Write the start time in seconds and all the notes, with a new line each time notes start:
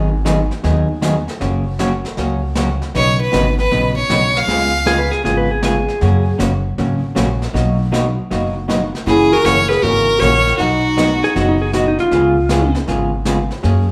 Already playing: G#1 F#3 D#4 G#4
0.25 D#3 F#3 B3 D#4 G#4, snare, hi-hat pedal
0.51 snare
0.63 D#2 D#3 F#3 B3 D#4 G#4, brush sweep, snare
1.02 D#3 F#3 B3 D#4 G#4, snare, hi-hat pedal
1.28 snare
1.40 F#1 C#3 F#3 A#3 C#4 F#4, brush sweep, snare
1.79 C#3 F#3 A#3 C#4 F#4, snare, hi-hat pedal
2.05 snare
2.17 C#2 C#3 F#3 A#3 C#4 F#4, brush sweep, snare
2.55 C#3 F#3 A#3 C#4 F#4, snare, hi-hat pedal
2.82 snare
2.94 B1 B2 C#3 F#3 B3 D#4 B4 C#5, brush sweep, snare
3.20 B4
3.32 G#1 B2 C#3 F#3 B3 D#4 B4, snare, hi-hat pedal
3.59 B4, snare
3.71 A#1 B2 C#3 F#3 B3 D#4 B4, brush sweep, snare
3.96 C#5
4.09 B1 B2 C#3 F#3 B3 D#4 B4, snare, hi-hat pedal
4.35 F5, snare
4.47 C#2 C#3 G#3 B3 F4 G#4, brush sweep, snare
4.86 C#3 G#3 B3 F4 G#4, snare, hi-hat pedal
4.98 B4
5.11 G#4, snare
5.24 G#1 C#3 G#3 B3 F4 G#4, brush sweep, snare
5.37 B4
5.51 G#4
5.63 C#3 G#3 B3 F4 G#4, snare, hi-hat pedal
5.88 snare
6.01 F#2 C#3 F#3 A#3 C#4 F#4, brush sweep, snare
6.38 F#1 C#3 F#3 A#3 C#4 F#4, snare, hi-hat pedal
6.78 G#1 C#3 F#3 A#3 C#4 F#4, brush sweep, snare
7.15 A#1 C#3 F#3 A#3 C#4 F#4, snare, hi-hat pedal
7.42 snare
7.54 B1 B2 F#3 A#3 D#4 F#4, brush sweep, snare
7.92 B2 F#3 A#3 D#4 F#4, snare, hi-hat pedal
8.31 F#1 B2 F#3 A#3 D#4 F#4, brush sweep, snare
8.68 B2 F#3 A#3 D#4 F#4, snare, hi-hat pedal
8.95 snare
9.06 F#1 C#3 E3 A#3 C#4 E4 F#4 G#4, brush sweep, snare
9.32 F#4 A#4
9.44 F#1 C#3 E3 A#3 C#4 F#4 A#4 C#5, snare, hi-hat pedal
9.68 G#4 B4, snare
9.82 G#1 C#3 E3 A#3 C#4 F#4 A#4, brush sweep, snare
10.19 A#1 C#3 E3 A#3 C#4 A#4 C#5, snare, hi-hat pedal
10.23 F#4
10.47 snare
10.57 B1 B2 F#3 B3 D#4 F#4, brush sweep, snare
10.97 B2 F#3 B3 D#4 F#4, snare, hi-hat pedal
11.23 G#4, snare
11.35 F#1 B2 F#3 B3 D#4 F#4, brush sweep, snare
11.49 D#4
11.62 G#4
11.73 B2 F#3 B3 D#4 F#4, snare, hi-hat pedal
11.88 D#4
11.99 F4, snare
12.11 C#2 C#3 G#3 B3 F4 G#4, brush sweep, snare
12.49 C#3 G#3 B3 F4 G#4, snare, hi-hat pedal
12.75 snare
12.87 G#1 C#3 G#3 B3 F4 G#4, brush sweep, snare
13.25 C#3 G#3 B3 F4 G#4, snare, hi-hat pedal
13.51 snare
13.63 F#2 F#3 A#3 C#4 G#4, brush sweep, snare